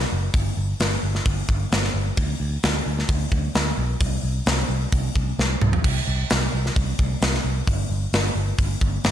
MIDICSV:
0, 0, Header, 1, 3, 480
1, 0, Start_track
1, 0, Tempo, 458365
1, 355, Time_signature, 4, 2, 24, 8
1, 9542, End_track
2, 0, Start_track
2, 0, Title_t, "Picked electric bass"
2, 0, Program_c, 0, 34
2, 129, Note_on_c, 0, 30, 89
2, 290, Note_off_c, 0, 30, 0
2, 351, Note_on_c, 0, 31, 91
2, 518, Note_off_c, 0, 31, 0
2, 599, Note_on_c, 0, 31, 92
2, 763, Note_off_c, 0, 31, 0
2, 837, Note_on_c, 0, 31, 96
2, 1002, Note_off_c, 0, 31, 0
2, 1078, Note_on_c, 0, 31, 90
2, 1243, Note_off_c, 0, 31, 0
2, 1318, Note_on_c, 0, 31, 104
2, 1483, Note_off_c, 0, 31, 0
2, 1557, Note_on_c, 0, 31, 87
2, 1722, Note_off_c, 0, 31, 0
2, 1800, Note_on_c, 0, 31, 89
2, 1964, Note_off_c, 0, 31, 0
2, 2032, Note_on_c, 0, 31, 89
2, 2199, Note_off_c, 0, 31, 0
2, 2275, Note_on_c, 0, 38, 100
2, 2441, Note_off_c, 0, 38, 0
2, 2514, Note_on_c, 0, 38, 93
2, 2681, Note_off_c, 0, 38, 0
2, 2763, Note_on_c, 0, 38, 97
2, 2927, Note_off_c, 0, 38, 0
2, 3000, Note_on_c, 0, 38, 95
2, 3165, Note_off_c, 0, 38, 0
2, 3234, Note_on_c, 0, 38, 96
2, 3401, Note_off_c, 0, 38, 0
2, 3473, Note_on_c, 0, 38, 89
2, 3641, Note_off_c, 0, 38, 0
2, 3719, Note_on_c, 0, 38, 90
2, 3884, Note_off_c, 0, 38, 0
2, 3954, Note_on_c, 0, 35, 92
2, 4122, Note_off_c, 0, 35, 0
2, 4193, Note_on_c, 0, 36, 92
2, 4361, Note_off_c, 0, 36, 0
2, 4434, Note_on_c, 0, 36, 89
2, 4602, Note_off_c, 0, 36, 0
2, 4673, Note_on_c, 0, 36, 96
2, 4841, Note_off_c, 0, 36, 0
2, 4908, Note_on_c, 0, 36, 95
2, 5077, Note_off_c, 0, 36, 0
2, 5159, Note_on_c, 0, 36, 97
2, 5324, Note_off_c, 0, 36, 0
2, 5396, Note_on_c, 0, 36, 83
2, 5563, Note_off_c, 0, 36, 0
2, 5641, Note_on_c, 0, 36, 98
2, 5806, Note_off_c, 0, 36, 0
2, 5877, Note_on_c, 0, 36, 94
2, 6043, Note_off_c, 0, 36, 0
2, 6117, Note_on_c, 0, 36, 88
2, 6283, Note_off_c, 0, 36, 0
2, 6362, Note_on_c, 0, 36, 96
2, 6526, Note_off_c, 0, 36, 0
2, 6608, Note_on_c, 0, 36, 97
2, 6770, Note_off_c, 0, 36, 0
2, 6841, Note_on_c, 0, 36, 90
2, 7006, Note_off_c, 0, 36, 0
2, 7084, Note_on_c, 0, 36, 100
2, 7247, Note_off_c, 0, 36, 0
2, 7324, Note_on_c, 0, 36, 85
2, 7487, Note_off_c, 0, 36, 0
2, 7556, Note_on_c, 0, 36, 92
2, 7722, Note_off_c, 0, 36, 0
2, 7796, Note_on_c, 0, 36, 93
2, 7961, Note_off_c, 0, 36, 0
2, 8037, Note_on_c, 0, 31, 95
2, 8202, Note_off_c, 0, 31, 0
2, 8271, Note_on_c, 0, 31, 97
2, 8438, Note_off_c, 0, 31, 0
2, 8510, Note_on_c, 0, 31, 93
2, 8677, Note_off_c, 0, 31, 0
2, 8747, Note_on_c, 0, 31, 92
2, 8915, Note_off_c, 0, 31, 0
2, 8993, Note_on_c, 0, 31, 108
2, 9158, Note_off_c, 0, 31, 0
2, 9228, Note_on_c, 0, 31, 97
2, 9395, Note_off_c, 0, 31, 0
2, 9466, Note_on_c, 0, 31, 96
2, 9542, Note_off_c, 0, 31, 0
2, 9542, End_track
3, 0, Start_track
3, 0, Title_t, "Drums"
3, 1, Note_on_c, 9, 38, 34
3, 105, Note_off_c, 9, 38, 0
3, 354, Note_on_c, 9, 46, 67
3, 355, Note_on_c, 9, 36, 127
3, 459, Note_off_c, 9, 46, 0
3, 460, Note_off_c, 9, 36, 0
3, 836, Note_on_c, 9, 46, 61
3, 844, Note_on_c, 9, 38, 114
3, 941, Note_off_c, 9, 46, 0
3, 949, Note_off_c, 9, 38, 0
3, 1203, Note_on_c, 9, 38, 32
3, 1308, Note_off_c, 9, 38, 0
3, 1317, Note_on_c, 9, 36, 115
3, 1317, Note_on_c, 9, 46, 72
3, 1421, Note_off_c, 9, 46, 0
3, 1422, Note_off_c, 9, 36, 0
3, 1558, Note_on_c, 9, 36, 92
3, 1663, Note_off_c, 9, 36, 0
3, 1799, Note_on_c, 9, 46, 66
3, 1807, Note_on_c, 9, 38, 120
3, 1904, Note_off_c, 9, 46, 0
3, 1912, Note_off_c, 9, 38, 0
3, 1927, Note_on_c, 9, 38, 34
3, 2031, Note_off_c, 9, 38, 0
3, 2275, Note_on_c, 9, 46, 74
3, 2277, Note_on_c, 9, 36, 118
3, 2380, Note_off_c, 9, 46, 0
3, 2381, Note_off_c, 9, 36, 0
3, 2754, Note_on_c, 9, 46, 64
3, 2763, Note_on_c, 9, 38, 120
3, 2859, Note_off_c, 9, 46, 0
3, 2867, Note_off_c, 9, 38, 0
3, 3128, Note_on_c, 9, 38, 31
3, 3233, Note_off_c, 9, 38, 0
3, 3235, Note_on_c, 9, 36, 118
3, 3235, Note_on_c, 9, 46, 70
3, 3340, Note_off_c, 9, 36, 0
3, 3340, Note_off_c, 9, 46, 0
3, 3474, Note_on_c, 9, 36, 90
3, 3579, Note_off_c, 9, 36, 0
3, 3714, Note_on_c, 9, 46, 58
3, 3723, Note_on_c, 9, 38, 114
3, 3819, Note_off_c, 9, 46, 0
3, 3827, Note_off_c, 9, 38, 0
3, 4193, Note_on_c, 9, 46, 67
3, 4195, Note_on_c, 9, 36, 123
3, 4298, Note_off_c, 9, 46, 0
3, 4300, Note_off_c, 9, 36, 0
3, 4674, Note_on_c, 9, 46, 66
3, 4682, Note_on_c, 9, 38, 107
3, 4779, Note_off_c, 9, 46, 0
3, 4787, Note_off_c, 9, 38, 0
3, 5155, Note_on_c, 9, 46, 67
3, 5157, Note_on_c, 9, 36, 122
3, 5259, Note_off_c, 9, 46, 0
3, 5262, Note_off_c, 9, 36, 0
3, 5399, Note_on_c, 9, 36, 84
3, 5503, Note_off_c, 9, 36, 0
3, 5649, Note_on_c, 9, 38, 70
3, 5754, Note_off_c, 9, 38, 0
3, 5880, Note_on_c, 9, 45, 100
3, 5985, Note_off_c, 9, 45, 0
3, 6001, Note_on_c, 9, 43, 99
3, 6106, Note_off_c, 9, 43, 0
3, 6118, Note_on_c, 9, 49, 115
3, 6119, Note_on_c, 9, 36, 121
3, 6223, Note_off_c, 9, 49, 0
3, 6224, Note_off_c, 9, 36, 0
3, 6597, Note_on_c, 9, 46, 63
3, 6605, Note_on_c, 9, 38, 122
3, 6701, Note_off_c, 9, 46, 0
3, 6710, Note_off_c, 9, 38, 0
3, 6973, Note_on_c, 9, 38, 30
3, 7078, Note_off_c, 9, 38, 0
3, 7081, Note_on_c, 9, 46, 72
3, 7082, Note_on_c, 9, 36, 122
3, 7186, Note_off_c, 9, 46, 0
3, 7187, Note_off_c, 9, 36, 0
3, 7320, Note_on_c, 9, 36, 87
3, 7425, Note_off_c, 9, 36, 0
3, 7558, Note_on_c, 9, 46, 63
3, 7567, Note_on_c, 9, 38, 117
3, 7663, Note_off_c, 9, 46, 0
3, 7671, Note_off_c, 9, 38, 0
3, 7687, Note_on_c, 9, 38, 33
3, 7792, Note_off_c, 9, 38, 0
3, 8037, Note_on_c, 9, 36, 126
3, 8037, Note_on_c, 9, 46, 68
3, 8141, Note_off_c, 9, 36, 0
3, 8142, Note_off_c, 9, 46, 0
3, 8515, Note_on_c, 9, 46, 62
3, 8524, Note_on_c, 9, 38, 110
3, 8620, Note_off_c, 9, 46, 0
3, 8629, Note_off_c, 9, 38, 0
3, 8989, Note_on_c, 9, 46, 65
3, 8991, Note_on_c, 9, 36, 111
3, 9094, Note_off_c, 9, 46, 0
3, 9096, Note_off_c, 9, 36, 0
3, 9230, Note_on_c, 9, 36, 87
3, 9334, Note_off_c, 9, 36, 0
3, 9466, Note_on_c, 9, 46, 67
3, 9474, Note_on_c, 9, 38, 116
3, 9542, Note_off_c, 9, 38, 0
3, 9542, Note_off_c, 9, 46, 0
3, 9542, End_track
0, 0, End_of_file